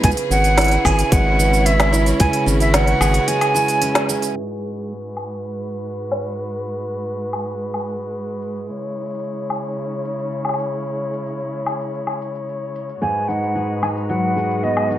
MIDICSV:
0, 0, Header, 1, 7, 480
1, 0, Start_track
1, 0, Key_signature, 5, "minor"
1, 0, Tempo, 540541
1, 35, Time_signature, 4, 2, 24, 8
1, 13307, End_track
2, 0, Start_track
2, 0, Title_t, "Flute"
2, 0, Program_c, 0, 73
2, 33, Note_on_c, 0, 80, 115
2, 87, Note_off_c, 0, 80, 0
2, 275, Note_on_c, 0, 78, 109
2, 758, Note_on_c, 0, 80, 94
2, 771, Note_off_c, 0, 78, 0
2, 993, Note_on_c, 0, 78, 99
2, 1007, Note_off_c, 0, 80, 0
2, 1473, Note_on_c, 0, 76, 102
2, 1486, Note_off_c, 0, 78, 0
2, 1834, Note_off_c, 0, 76, 0
2, 1952, Note_on_c, 0, 80, 107
2, 2176, Note_off_c, 0, 80, 0
2, 2314, Note_on_c, 0, 76, 89
2, 2437, Note_on_c, 0, 78, 90
2, 2450, Note_off_c, 0, 76, 0
2, 2911, Note_on_c, 0, 80, 96
2, 2925, Note_off_c, 0, 78, 0
2, 3633, Note_off_c, 0, 80, 0
2, 11559, Note_on_c, 0, 80, 78
2, 11793, Note_on_c, 0, 78, 79
2, 11807, Note_off_c, 0, 80, 0
2, 12265, Note_off_c, 0, 78, 0
2, 12270, Note_on_c, 0, 80, 75
2, 12325, Note_off_c, 0, 80, 0
2, 12510, Note_on_c, 0, 78, 84
2, 12994, Note_on_c, 0, 75, 84
2, 13008, Note_off_c, 0, 78, 0
2, 13307, Note_off_c, 0, 75, 0
2, 13307, End_track
3, 0, Start_track
3, 0, Title_t, "Vibraphone"
3, 0, Program_c, 1, 11
3, 0, Control_c, 1, 64, 127
3, 35, Note_on_c, 1, 71, 80
3, 48, Control_c, 1, 64, 0
3, 222, Control_c, 1, 64, 127
3, 263, Note_off_c, 1, 71, 0
3, 517, Note_on_c, 1, 68, 68
3, 744, Note_off_c, 1, 68, 0
3, 1236, Note_on_c, 1, 71, 81
3, 1463, Note_off_c, 1, 71, 0
3, 1716, Note_on_c, 1, 68, 72
3, 1943, Note_off_c, 1, 68, 0
3, 2438, Note_on_c, 1, 71, 73
3, 2664, Note_off_c, 1, 71, 0
3, 2912, Note_on_c, 1, 68, 77
3, 3141, Note_off_c, 1, 68, 0
3, 3153, Note_on_c, 1, 80, 107
3, 3382, Note_off_c, 1, 80, 0
3, 3630, Note_on_c, 1, 68, 93
3, 3860, Note_off_c, 1, 68, 0
3, 3884, Control_c, 1, 64, 0
3, 13307, End_track
4, 0, Start_track
4, 0, Title_t, "String quartet"
4, 0, Program_c, 2, 48
4, 0, Note_on_c, 2, 68, 76
4, 27, Note_on_c, 2, 64, 84
4, 28, Note_on_c, 2, 61, 77
4, 31, Note_on_c, 2, 49, 91
4, 1922, Note_off_c, 2, 68, 0
4, 1947, Note_on_c, 2, 66, 80
4, 3835, Note_off_c, 2, 64, 0
4, 3836, Note_off_c, 2, 61, 0
4, 3837, Note_off_c, 2, 49, 0
4, 3852, Note_off_c, 2, 66, 0
4, 3870, Note_on_c, 2, 56, 61
4, 3874, Note_on_c, 2, 66, 66
4, 3874, Note_on_c, 2, 71, 77
4, 3876, Note_on_c, 2, 44, 67
4, 7679, Note_off_c, 2, 66, 0
4, 7679, Note_off_c, 2, 71, 0
4, 7680, Note_off_c, 2, 44, 0
4, 7703, Note_on_c, 2, 73, 75
4, 7708, Note_on_c, 2, 64, 63
4, 7710, Note_on_c, 2, 49, 71
4, 11513, Note_off_c, 2, 73, 0
4, 11516, Note_off_c, 2, 64, 0
4, 11517, Note_off_c, 2, 49, 0
4, 11517, Note_off_c, 2, 56, 0
4, 11560, Note_on_c, 2, 71, 79
4, 11564, Note_on_c, 2, 66, 63
4, 11565, Note_on_c, 2, 56, 65
4, 11566, Note_on_c, 2, 44, 73
4, 13307, Note_off_c, 2, 44, 0
4, 13307, Note_off_c, 2, 56, 0
4, 13307, Note_off_c, 2, 66, 0
4, 13307, Note_off_c, 2, 71, 0
4, 13307, End_track
5, 0, Start_track
5, 0, Title_t, "Steel-string acoustic guitar"
5, 0, Program_c, 3, 25
5, 0, Note_on_c, 3, 68, 63
5, 31, Note_on_c, 3, 49, 84
5, 275, Note_on_c, 3, 61, 57
5, 512, Note_on_c, 3, 64, 65
5, 749, Note_off_c, 3, 68, 0
5, 753, Note_on_c, 3, 68, 67
5, 995, Note_on_c, 3, 56, 67
5, 1223, Note_off_c, 3, 64, 0
5, 1233, Note_on_c, 3, 64, 59
5, 1461, Note_off_c, 3, 61, 0
5, 1472, Note_on_c, 3, 61, 67
5, 1699, Note_off_c, 3, 64, 0
5, 1710, Note_on_c, 3, 64, 68
5, 1939, Note_off_c, 3, 49, 0
5, 1950, Note_on_c, 3, 49, 83
5, 2177, Note_off_c, 3, 61, 0
5, 2187, Note_on_c, 3, 61, 61
5, 2419, Note_off_c, 3, 64, 0
5, 2429, Note_on_c, 3, 64, 66
5, 2667, Note_off_c, 3, 68, 0
5, 2670, Note_on_c, 3, 68, 69
5, 2907, Note_off_c, 3, 56, 0
5, 2910, Note_on_c, 3, 56, 73
5, 3137, Note_off_c, 3, 64, 0
5, 3148, Note_on_c, 3, 64, 62
5, 3378, Note_off_c, 3, 61, 0
5, 3388, Note_on_c, 3, 61, 62
5, 3619, Note_off_c, 3, 64, 0
5, 3629, Note_on_c, 3, 64, 62
5, 3872, Note_off_c, 3, 49, 0
5, 3920, Note_off_c, 3, 61, 0
5, 3920, Note_off_c, 3, 64, 0
5, 4364, Note_off_c, 3, 56, 0
5, 4364, Note_off_c, 3, 68, 0
5, 11558, Note_on_c, 3, 44, 69
5, 11562, Note_on_c, 3, 68, 61
5, 11797, Note_on_c, 3, 63, 52
5, 12032, Note_off_c, 3, 68, 0
5, 12036, Note_on_c, 3, 68, 60
5, 12266, Note_off_c, 3, 63, 0
5, 12277, Note_on_c, 3, 63, 56
5, 12515, Note_on_c, 3, 54, 59
5, 12750, Note_off_c, 3, 68, 0
5, 12754, Note_on_c, 3, 68, 58
5, 12994, Note_on_c, 3, 59, 52
5, 13225, Note_off_c, 3, 63, 0
5, 13235, Note_on_c, 3, 63, 51
5, 13307, Note_off_c, 3, 44, 0
5, 13307, Note_off_c, 3, 54, 0
5, 13307, Note_off_c, 3, 59, 0
5, 13307, Note_off_c, 3, 63, 0
5, 13307, Note_off_c, 3, 68, 0
5, 13307, End_track
6, 0, Start_track
6, 0, Title_t, "Analog synth bass"
6, 0, Program_c, 4, 38
6, 33, Note_on_c, 4, 37, 98
6, 116, Note_off_c, 4, 37, 0
6, 270, Note_on_c, 4, 32, 88
6, 691, Note_off_c, 4, 32, 0
6, 753, Note_on_c, 4, 32, 84
6, 917, Note_off_c, 4, 32, 0
6, 992, Note_on_c, 4, 32, 83
6, 1892, Note_off_c, 4, 32, 0
6, 1955, Note_on_c, 4, 37, 97
6, 2037, Note_off_c, 4, 37, 0
6, 2189, Note_on_c, 4, 32, 83
6, 2611, Note_off_c, 4, 32, 0
6, 2668, Note_on_c, 4, 32, 91
6, 2835, Note_off_c, 4, 32, 0
6, 13307, End_track
7, 0, Start_track
7, 0, Title_t, "Drums"
7, 32, Note_on_c, 9, 46, 65
7, 33, Note_on_c, 9, 36, 103
7, 102, Note_on_c, 9, 82, 32
7, 120, Note_off_c, 9, 46, 0
7, 122, Note_off_c, 9, 36, 0
7, 152, Note_on_c, 9, 46, 44
7, 190, Note_off_c, 9, 82, 0
7, 241, Note_off_c, 9, 46, 0
7, 279, Note_on_c, 9, 82, 68
7, 368, Note_off_c, 9, 82, 0
7, 391, Note_on_c, 9, 46, 32
7, 399, Note_on_c, 9, 82, 41
7, 480, Note_off_c, 9, 46, 0
7, 488, Note_off_c, 9, 82, 0
7, 511, Note_on_c, 9, 38, 71
7, 511, Note_on_c, 9, 46, 60
7, 519, Note_on_c, 9, 82, 31
7, 544, Note_off_c, 9, 46, 0
7, 544, Note_on_c, 9, 46, 51
7, 572, Note_off_c, 9, 46, 0
7, 572, Note_on_c, 9, 46, 41
7, 600, Note_off_c, 9, 38, 0
7, 604, Note_off_c, 9, 46, 0
7, 604, Note_on_c, 9, 46, 36
7, 608, Note_off_c, 9, 82, 0
7, 634, Note_off_c, 9, 46, 0
7, 634, Note_on_c, 9, 46, 31
7, 723, Note_off_c, 9, 46, 0
7, 754, Note_on_c, 9, 36, 60
7, 755, Note_on_c, 9, 77, 81
7, 763, Note_on_c, 9, 82, 66
7, 843, Note_off_c, 9, 36, 0
7, 844, Note_off_c, 9, 77, 0
7, 852, Note_off_c, 9, 82, 0
7, 876, Note_on_c, 9, 46, 42
7, 884, Note_on_c, 9, 82, 39
7, 965, Note_off_c, 9, 46, 0
7, 973, Note_off_c, 9, 82, 0
7, 994, Note_on_c, 9, 36, 122
7, 994, Note_on_c, 9, 46, 74
7, 1002, Note_on_c, 9, 82, 34
7, 1082, Note_off_c, 9, 36, 0
7, 1083, Note_off_c, 9, 46, 0
7, 1091, Note_off_c, 9, 82, 0
7, 1241, Note_on_c, 9, 82, 73
7, 1330, Note_off_c, 9, 82, 0
7, 1363, Note_on_c, 9, 82, 44
7, 1452, Note_off_c, 9, 82, 0
7, 1475, Note_on_c, 9, 46, 69
7, 1483, Note_on_c, 9, 82, 30
7, 1563, Note_off_c, 9, 46, 0
7, 1571, Note_off_c, 9, 82, 0
7, 1595, Note_on_c, 9, 38, 75
7, 1595, Note_on_c, 9, 46, 33
7, 1595, Note_on_c, 9, 77, 77
7, 1684, Note_off_c, 9, 38, 0
7, 1684, Note_off_c, 9, 46, 0
7, 1684, Note_off_c, 9, 77, 0
7, 1720, Note_on_c, 9, 82, 71
7, 1809, Note_off_c, 9, 82, 0
7, 1832, Note_on_c, 9, 46, 33
7, 1840, Note_on_c, 9, 82, 45
7, 1921, Note_off_c, 9, 46, 0
7, 1929, Note_off_c, 9, 82, 0
7, 1952, Note_on_c, 9, 46, 68
7, 1954, Note_on_c, 9, 36, 116
7, 1960, Note_on_c, 9, 82, 30
7, 2041, Note_off_c, 9, 46, 0
7, 2043, Note_off_c, 9, 36, 0
7, 2049, Note_off_c, 9, 82, 0
7, 2071, Note_on_c, 9, 46, 46
7, 2160, Note_off_c, 9, 46, 0
7, 2199, Note_on_c, 9, 82, 67
7, 2288, Note_off_c, 9, 82, 0
7, 2312, Note_on_c, 9, 46, 31
7, 2320, Note_on_c, 9, 82, 42
7, 2401, Note_off_c, 9, 46, 0
7, 2409, Note_off_c, 9, 82, 0
7, 2431, Note_on_c, 9, 38, 84
7, 2431, Note_on_c, 9, 46, 65
7, 2439, Note_on_c, 9, 82, 31
7, 2520, Note_off_c, 9, 38, 0
7, 2520, Note_off_c, 9, 46, 0
7, 2528, Note_off_c, 9, 82, 0
7, 2552, Note_on_c, 9, 46, 33
7, 2641, Note_off_c, 9, 46, 0
7, 2671, Note_on_c, 9, 77, 74
7, 2679, Note_on_c, 9, 82, 73
7, 2760, Note_off_c, 9, 77, 0
7, 2768, Note_off_c, 9, 82, 0
7, 2789, Note_on_c, 9, 46, 43
7, 2878, Note_off_c, 9, 46, 0
7, 2911, Note_on_c, 9, 46, 68
7, 2919, Note_on_c, 9, 82, 30
7, 3000, Note_off_c, 9, 46, 0
7, 3008, Note_off_c, 9, 82, 0
7, 3031, Note_on_c, 9, 46, 34
7, 3031, Note_on_c, 9, 77, 65
7, 3120, Note_off_c, 9, 46, 0
7, 3120, Note_off_c, 9, 77, 0
7, 3159, Note_on_c, 9, 82, 75
7, 3248, Note_off_c, 9, 82, 0
7, 3271, Note_on_c, 9, 46, 35
7, 3279, Note_on_c, 9, 82, 45
7, 3360, Note_off_c, 9, 46, 0
7, 3368, Note_off_c, 9, 82, 0
7, 3389, Note_on_c, 9, 46, 66
7, 3397, Note_on_c, 9, 82, 31
7, 3477, Note_off_c, 9, 46, 0
7, 3485, Note_off_c, 9, 82, 0
7, 3509, Note_on_c, 9, 38, 78
7, 3509, Note_on_c, 9, 46, 32
7, 3598, Note_off_c, 9, 38, 0
7, 3598, Note_off_c, 9, 46, 0
7, 3635, Note_on_c, 9, 82, 78
7, 3724, Note_off_c, 9, 82, 0
7, 3751, Note_on_c, 9, 46, 35
7, 3759, Note_on_c, 9, 82, 45
7, 3839, Note_off_c, 9, 46, 0
7, 3847, Note_off_c, 9, 82, 0
7, 4120, Note_on_c, 9, 82, 60
7, 4208, Note_off_c, 9, 82, 0
7, 4239, Note_on_c, 9, 82, 37
7, 4327, Note_off_c, 9, 82, 0
7, 4359, Note_on_c, 9, 82, 26
7, 4448, Note_off_c, 9, 82, 0
7, 4588, Note_on_c, 9, 77, 55
7, 4596, Note_on_c, 9, 82, 60
7, 4677, Note_off_c, 9, 77, 0
7, 4685, Note_off_c, 9, 82, 0
7, 4716, Note_on_c, 9, 82, 32
7, 4804, Note_off_c, 9, 82, 0
7, 4839, Note_on_c, 9, 82, 27
7, 4928, Note_off_c, 9, 82, 0
7, 5075, Note_on_c, 9, 82, 58
7, 5164, Note_off_c, 9, 82, 0
7, 5197, Note_on_c, 9, 82, 34
7, 5286, Note_off_c, 9, 82, 0
7, 5317, Note_on_c, 9, 82, 28
7, 5405, Note_off_c, 9, 82, 0
7, 5431, Note_on_c, 9, 77, 66
7, 5520, Note_off_c, 9, 77, 0
7, 5560, Note_on_c, 9, 82, 64
7, 5648, Note_off_c, 9, 82, 0
7, 5679, Note_on_c, 9, 82, 35
7, 5768, Note_off_c, 9, 82, 0
7, 5799, Note_on_c, 9, 82, 28
7, 5887, Note_off_c, 9, 82, 0
7, 6160, Note_on_c, 9, 82, 62
7, 6249, Note_off_c, 9, 82, 0
7, 6280, Note_on_c, 9, 82, 25
7, 6369, Note_off_c, 9, 82, 0
7, 6510, Note_on_c, 9, 77, 60
7, 6518, Note_on_c, 9, 82, 60
7, 6599, Note_off_c, 9, 77, 0
7, 6607, Note_off_c, 9, 82, 0
7, 6639, Note_on_c, 9, 82, 33
7, 6728, Note_off_c, 9, 82, 0
7, 6760, Note_on_c, 9, 82, 30
7, 6849, Note_off_c, 9, 82, 0
7, 6872, Note_on_c, 9, 77, 49
7, 6961, Note_off_c, 9, 77, 0
7, 6998, Note_on_c, 9, 82, 64
7, 7087, Note_off_c, 9, 82, 0
7, 7118, Note_on_c, 9, 82, 39
7, 7207, Note_off_c, 9, 82, 0
7, 7235, Note_on_c, 9, 82, 26
7, 7324, Note_off_c, 9, 82, 0
7, 7475, Note_on_c, 9, 82, 66
7, 7564, Note_off_c, 9, 82, 0
7, 7596, Note_on_c, 9, 82, 39
7, 7684, Note_off_c, 9, 82, 0
7, 7717, Note_on_c, 9, 82, 30
7, 7806, Note_off_c, 9, 82, 0
7, 7957, Note_on_c, 9, 82, 29
7, 8000, Note_off_c, 9, 82, 0
7, 8000, Note_on_c, 9, 82, 31
7, 8040, Note_off_c, 9, 82, 0
7, 8040, Note_on_c, 9, 82, 38
7, 8080, Note_off_c, 9, 82, 0
7, 8080, Note_on_c, 9, 82, 45
7, 8121, Note_off_c, 9, 82, 0
7, 8121, Note_on_c, 9, 82, 50
7, 8162, Note_off_c, 9, 82, 0
7, 8162, Note_on_c, 9, 82, 58
7, 8205, Note_off_c, 9, 82, 0
7, 8205, Note_on_c, 9, 82, 30
7, 8294, Note_off_c, 9, 82, 0
7, 8437, Note_on_c, 9, 77, 56
7, 8445, Note_on_c, 9, 82, 64
7, 8525, Note_off_c, 9, 77, 0
7, 8533, Note_off_c, 9, 82, 0
7, 8567, Note_on_c, 9, 82, 37
7, 8625, Note_off_c, 9, 82, 0
7, 8625, Note_on_c, 9, 82, 26
7, 8714, Note_off_c, 9, 82, 0
7, 8924, Note_on_c, 9, 82, 67
7, 9013, Note_off_c, 9, 82, 0
7, 9047, Note_on_c, 9, 82, 38
7, 9135, Note_off_c, 9, 82, 0
7, 9165, Note_on_c, 9, 82, 30
7, 9254, Note_off_c, 9, 82, 0
7, 9277, Note_on_c, 9, 77, 56
7, 9316, Note_off_c, 9, 77, 0
7, 9316, Note_on_c, 9, 77, 52
7, 9357, Note_off_c, 9, 77, 0
7, 9357, Note_on_c, 9, 77, 41
7, 9405, Note_on_c, 9, 82, 67
7, 9446, Note_off_c, 9, 77, 0
7, 9494, Note_off_c, 9, 82, 0
7, 9585, Note_on_c, 9, 82, 40
7, 9646, Note_off_c, 9, 82, 0
7, 9646, Note_on_c, 9, 82, 30
7, 9735, Note_off_c, 9, 82, 0
7, 9886, Note_on_c, 9, 82, 62
7, 9974, Note_off_c, 9, 82, 0
7, 10005, Note_on_c, 9, 82, 36
7, 10093, Note_off_c, 9, 82, 0
7, 10126, Note_on_c, 9, 82, 26
7, 10215, Note_off_c, 9, 82, 0
7, 10358, Note_on_c, 9, 77, 58
7, 10366, Note_on_c, 9, 82, 58
7, 10447, Note_off_c, 9, 77, 0
7, 10455, Note_off_c, 9, 82, 0
7, 10486, Note_on_c, 9, 82, 36
7, 10575, Note_off_c, 9, 82, 0
7, 10607, Note_on_c, 9, 82, 28
7, 10696, Note_off_c, 9, 82, 0
7, 10718, Note_on_c, 9, 77, 48
7, 10807, Note_off_c, 9, 77, 0
7, 10847, Note_on_c, 9, 82, 65
7, 10936, Note_off_c, 9, 82, 0
7, 10966, Note_on_c, 9, 82, 37
7, 11055, Note_off_c, 9, 82, 0
7, 11087, Note_on_c, 9, 82, 28
7, 11176, Note_off_c, 9, 82, 0
7, 11325, Note_on_c, 9, 82, 71
7, 11414, Note_off_c, 9, 82, 0
7, 11447, Note_on_c, 9, 82, 40
7, 11535, Note_off_c, 9, 82, 0
7, 11567, Note_on_c, 9, 82, 29
7, 11656, Note_off_c, 9, 82, 0
7, 11806, Note_on_c, 9, 82, 56
7, 11895, Note_off_c, 9, 82, 0
7, 11927, Note_on_c, 9, 82, 35
7, 12015, Note_off_c, 9, 82, 0
7, 12047, Note_on_c, 9, 82, 26
7, 12136, Note_off_c, 9, 82, 0
7, 12279, Note_on_c, 9, 77, 61
7, 12287, Note_on_c, 9, 82, 61
7, 12368, Note_off_c, 9, 77, 0
7, 12376, Note_off_c, 9, 82, 0
7, 12406, Note_on_c, 9, 82, 35
7, 12495, Note_off_c, 9, 82, 0
7, 12528, Note_on_c, 9, 82, 29
7, 12617, Note_off_c, 9, 82, 0
7, 12766, Note_on_c, 9, 82, 63
7, 12855, Note_off_c, 9, 82, 0
7, 12884, Note_on_c, 9, 82, 37
7, 12973, Note_off_c, 9, 82, 0
7, 13002, Note_on_c, 9, 82, 27
7, 13091, Note_off_c, 9, 82, 0
7, 13114, Note_on_c, 9, 77, 64
7, 13203, Note_off_c, 9, 77, 0
7, 13241, Note_on_c, 9, 82, 68
7, 13307, Note_off_c, 9, 82, 0
7, 13307, End_track
0, 0, End_of_file